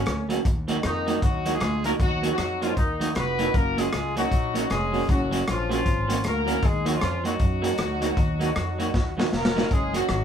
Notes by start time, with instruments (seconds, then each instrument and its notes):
Already playing: horn section C#3 A#3 C#4
0.06 upright bass D2, cross-stick, closed hi-hat
0.29 clean electric guitar F#3 A#3 C#4 F#4, closed hi-hat
0.45 upright bass D#2, kick, closed hi-hat
0.68 clean electric guitar F#3 A#3 D#4 F#4, closed hi-hat
0.83 upright bass F2, horn section D#3 A#3 D#4, cross-stick, closed hi-hat
1.07 clean electric guitar F#3 A#3 D#4 F#4, closed hi-hat
1.22 upright bass D#2, horn section F#3 D#4 F#4, kick, closed hi-hat
1.45 clean electric guitar F#3 A#3 D#4 F#4, closed hi-hat
1.54 horn section G#3 F4 G#4
1.60 upright bass D2, muted clean electric guitar stroke, cross-stick, closed hi-hat
1.84 clean electric guitar F#3 A#3 D#4 F#4, horn section A#3 F#4 A#4, closed hi-hat
2.00 upright bass D#2, horn section F#3 D#4 F#4, kick, closed hi-hat
2.22 clean electric guitar F#3 A#3 D#4 F#4, closed hi-hat
2.32 horn section F#3 D#4 F#4
2.38 upright bass F2, cross-stick, closed hi-hat
2.62 horn section F3 C#4 F4, clean electric guitar F#3 A#3 D#4 F#4, closed hi-hat
2.77 upright bass D#2, horn section D#3 A#3 D#4, kick, closed hi-hat
3.00 clean electric guitar F#3 A#3 D#4 F#4, closed hi-hat
3.15 upright bass F1, horn section B3 F#4 B4, cross-stick, closed hi-hat
3.39 clean electric guitar F#3 A#3 D#4 F#4, closed hi-hat
3.54 upright bass F#1, horn section A#3 F#4 A#4, kick, closed hi-hat
3.77 clean electric guitar F#3 A#3 C#4 F#4, horn section G#3 F4 G#4, closed hi-hat
3.93 upright bass C#2, cross-stick, closed hi-hat
4.16 clean electric guitar F#3 A#3 C#4 F#4, horn section F#3 D#4 F#4, closed hi-hat
4.32 upright bass A#1, kick, closed hi-hat
4.54 clean electric guitar F#3 A#3 C#4 F#4, closed hi-hat
4.69 upright bass F1, horn section G#3 C#4 G#4, muted clean electric guitar stroke, cross-stick, closed hi-hat
4.92 clean electric guitar F#3 A#3 C#4 F#4, open hi-hat
5.09 upright bass F#1, horn section F#3 C#4 F#4, kick, closed hi-hat
5.31 clean electric guitar F#3 A#3 C#4 F#4, closed hi-hat
5.48 upright bass A#1, horn section F3 C#4 F4, cross-stick, closed hi-hat
5.69 horn section F3 C#4 F4, clean electric guitar F#3 A#3 C#4 F#4, closed hi-hat
5.86 upright bass G#1, kick, closed hi-hat
6.08 clean electric guitar F#3 A#3 C#4 F#4, closed hi-hat
6.24 upright bass D2, horn section A#3 F#4 A#4, cross-stick, closed hi-hat
6.46 clean electric guitar F#3 A#3 C#4 F#4, closed hi-hat
6.62 upright bass D#2, horn section G#3 D#4 G#4, kick, closed hi-hat
6.85 clean electric guitar F#3 A#3 D#4 F#4, horn section F#3 D#4 F#4, closed hi-hat
6.95 horn section F3 C#4 F4
7.01 upright bass F2, cross-stick, closed hi-hat
7.24 clean electric guitar F#3 A#3 D#4 F#4, horn section F#3 D#4 F#4, closed hi-hat
7.39 upright bass F#2, kick, closed hi-hat
7.62 clean electric guitar F#3 A#3 D#4 F#4, closed hi-hat
7.78 upright bass D2, muted clean electric guitar stroke, cross-stick, closed hi-hat
8.01 clean electric guitar F#3 A#3 D#4 F#4, closed hi-hat
8.17 upright bass D#2, kick, closed hi-hat
8.40 clean electric guitar F#3 A#3 D#4 F#4, closed hi-hat
8.56 upright bass F2, cross-stick, closed hi-hat
8.78 clean electric guitar F#3 A#3 D#4 F#4, closed hi-hat
8.94 upright bass D#2, kick, snare
9.17 clean electric guitar F#3 A#3 D#4 F#4, snare
9.33 upright bass F1, horn section A#3 F#4 A#4, snare
9.45 snare
9.55 clean electric guitar F#3 A#3 D#4 F#4, snare
9.71 upright bass F#1, horn section G#3 C#4 G#4, kick, closed hi-hat
9.93 clean electric guitar F#3 A#3 C#4 F#4, horn section F#3 D#4 F#4, closed hi-hat
10.09 upright bass G#1, cross-stick, closed hi-hat